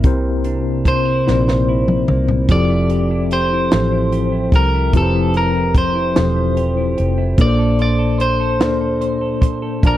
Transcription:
Already playing: C3 A#3 C4 D4 E4 A#4 E5
0.04 C2 C3 C4 E4 A#4 C5, kick, closed hi-hat
0.44 D4, closed hi-hat
0.85 D4 C5, kick, closed hi-hat
1.05 E4
1.26 A#1 C3 A#3 C4 D#4 A#4 D5, snare
1.35 E4
1.48 snare
1.69 E4
1.88 mid tom
2.08 C2 A#3, mid tom
2.29 floor tom
2.49 F1 F3 C4 E4 G4 A4 D5, kick, closed hi-hat
2.70 E4
2.90 G4, closed hi-hat
3.11 E4
3.31 G4 C5, closed hi-hat
3.53 E4
3.71 A1 F3 C4 E4 G4 A4, snare, closed hi-hat
3.92 E4
4.12 G4, closed hi-hat
4.32 E4
4.52 C2 G4 A#4, kick, closed hi-hat
4.74 E4
4.93 F1 F3 C4 E4 G4 B4, kick, closed hi-hat
4.97 A4
5.02 C5
5.16 E4
5.34 G4 A#4, closed hi-hat
5.55 E4
5.75 G4 C5, kick, closed hi-hat
5.95 E4
6.15 E1 F3 C4 E4 G4 A4, snare, closed hi-hat
6.36 E4
6.57 G4, closed hi-hat
6.77 E4
6.97 F1 G4, closed hi-hat
7.18 E4
7.37 A#1 A#2 A#3 D4 A4 B4, kick, closed hi-hat
7.41 D5
7.47 C5
7.59 A4
7.79 C5 D5, closed hi-hat
7.99 A4
8.18 C5, closed hi-hat
8.40 A4
8.60 D2 A#2 A#3 D4 A4 D5, snare, closed hi-hat
8.81 A4
9.01 C5, closed hi-hat
9.21 A4
9.41 C5, kick, closed hi-hat
9.62 A4
9.83 A#1 A#2 A#3 D4 D5 A5, kick, closed hi-hat
9.87 A#4

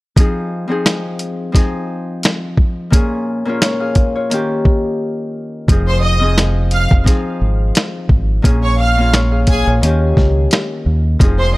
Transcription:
0.16 F3 C4 D#4, kick, closed hi-hat
0.20 G#4
0.68 F3 C4 D#4 G#4
0.86 snare, closed hi-hat
1.19 closed hi-hat
1.52 F3 C4 D#4 G#4, kick, snare, closed hi-hat
2.23 snare, closed hi-hat
2.57 kick
2.90 A#2 A#3 C#4 G#4, kick, closed hi-hat
3.45 A#2 A#3 C#4 F4
3.62 F4 C#5, snare, closed hi-hat
3.80 G#4 F5
3.95 kick, closed hi-hat
4.15 F4 C#5
4.30 D#3 A#3 C#4 G4, closed hi-hat
4.65 kick
5.68 F1 F3 C4 D#4 G#4, kick, closed hi-hat
5.87 C5 C6
6.03 D#5 D#6
6.19 F3 C4 D#4 G#4
6.38 snare, closed hi-hat
6.71 F5 F6, closed hi-hat
6.91 F1, kick
7.04 F3 C4 D#4, kick, snare, closed hi-hat
7.08 G#4
7.41 G#1
7.75 snare, closed hi-hat
8.09 G#1, kick
8.42 A#1 A#2 A#3 C#4 G#4, kick, closed hi-hat
8.63 C#5 C#6
8.80 F5 F6
8.97 A#2 A#3 C#4 F4
9.14 F4 C#5, snare, closed hi-hat
9.31 G#4 F5
9.47 G#4 G#5, kick, closed hi-hat
9.67 A#1 F4 C#5
9.81 D#2 D#3 A#3 C#4 G4, closed hi-hat
10.17 C#2, kick, snare
10.51 snare, closed hi-hat
10.86 D#2
11.19 F1 F3 C4 D#4 G#4, kick, closed hi-hat
11.39 C5 C6

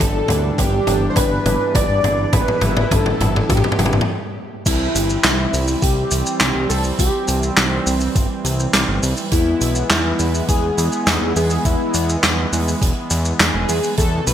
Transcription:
Already playing: G3
0.00 G1 E3 D4 A4, kick, closed hi-hat, mid tom
0.28 D2, closed hi-hat, mid tom
0.58 G1 G4, kick, closed hi-hat, mid tom
0.87 G1, closed hi-hat, mid tom
1.10 C5
1.16 G1 B4, kick, closed hi-hat, mid tom
1.45 G1, closed hi-hat, mid tom
1.75 G1 D5, kick, closed hi-hat, mid tom
1.89 G1
2.04 G1, closed hi-hat, mid tom
2.33 G1 E4 B4, kick, closed hi-hat, mid tom
2.48 mid tom
2.61 G1, closed hi-hat, mid tom
2.77 mid tom
2.91 G1 A4, kick, closed hi-hat, mid tom
3.06 mid tom
3.20 G1, closed hi-hat, mid tom
3.36 mid tom
3.49 G2 G4, kick, closed hi-hat, mid tom
3.57 mid tom
3.64 mid tom
3.72 mid tom
3.79 G1, closed hi-hat, mid tom
3.86 mid tom
3.93 mid tom
4.01 mid tom
4.66 C2 E3 G3 C4 E4, kick, closed hi-hat, crash, shaker
4.95 G1, closed hi-hat, shaker
5.10 shaker
5.24 C2 E4, snare, clap, closed hi-hat, shaker
5.53 C2, open hi-hat, shaker
5.68 shaker
5.82 C2 G4, kick, closed hi-hat, shaker
6.11 C2, closed hi-hat, shaker
6.26 shaker
6.40 C2, snare, clap, closed hi-hat, shaker
6.55 C2
6.69 C2 A4, open hi-hat, shaker
6.84 shaker
6.99 C2 G4, kick, closed hi-hat, shaker
7.28 C2, closed hi-hat, shaker
7.43 shaker
7.57 C2, snare, clap, closed hi-hat, shaker
7.86 C2, open hi-hat, shaker
8.00 shaker
8.15 G1, kick, closed hi-hat, shaker
8.44 C2, closed hi-hat, shaker
8.60 shaker
8.73 C2, snare, clap, closed hi-hat, shaker
8.88 G1
9.03 C2, open hi-hat, shaker
9.17 shaker
9.31 E2 G#3 B3 E4, kick, closed hi-hat, shaker
9.61 B1, closed hi-hat, shaker
9.75 shaker
9.90 E2 E4, snare, clap, closed hi-hat, shaker
10.19 E2, open hi-hat, shaker
10.35 shaker
10.48 E2 G#4, kick, closed hi-hat, shaker
10.78 E2, closed hi-hat, shaker
10.92 shaker
11.06 E2, snare, clap, closed hi-hat, shaker
11.22 E2
11.36 E2 G#4, open hi-hat, shaker
11.50 shaker
11.65 E2 E4, kick, closed hi-hat, shaker
11.94 E2, closed hi-hat, shaker
12.09 shaker
12.23 E2, snare, clap, closed hi-hat, shaker
12.53 E2, open hi-hat, shaker
12.68 shaker
12.82 E1, kick, closed hi-hat, shaker
13.10 E2, closed hi-hat, shaker
13.25 shaker
13.40 E2 G#4, snare, clap, closed hi-hat, shaker
13.54 E1
13.69 E2, open hi-hat, shaker
13.84 shaker
13.97 E2 B2 C3 A3 A4, kick, closed hi-hat, shaker
14.27 B1 B4, closed hi-hat, shaker

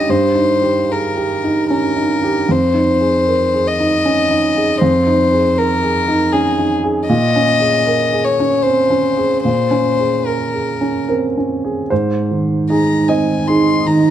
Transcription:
Already playing: C#4 D#4 G4 G#4 D#5
0.09 G2 C5
0.35 D#4
0.62 G4
0.89 G#4 A#4
1.16 G4
1.44 D#4
1.70 C#4 A#4
1.97 D#4
2.23 G4
2.49 F2 C5
2.74 D#4
3.00 G#4
3.27 A#4
3.54 G#4
3.67 D#5
3.80 D#4
4.05 C#4
4.30 D#4
4.57 G#4
4.81 F2 C5
5.07 D#4
5.32 G#4
5.57 A#4
5.83 G#4
6.08 D#4
6.33 C#4 G#4
6.58 D#4
6.84 G#4
7.08 A#2 D#5
7.36 C#4
7.60 G#4
7.86 A#4
8.13 G#4
8.24 C#5
8.40 C#4
8.63 C4 C5
8.90 C#4
9.17 G#4
9.44 A#2 C5
9.71 C#4
9.99 G#4
10.26 A#4
10.54 G#4
10.81 C#4
11.08 C4 A#4
11.37 C#4
11.65 G#4
11.90 G#2 G#3 D#4 C5 D#5
12.31 D#3
12.70 D#4 G#4 A#5
13.08 C4 D#5 G#5
13.47 D#4 G#4 C6
13.86 D#3 A#5

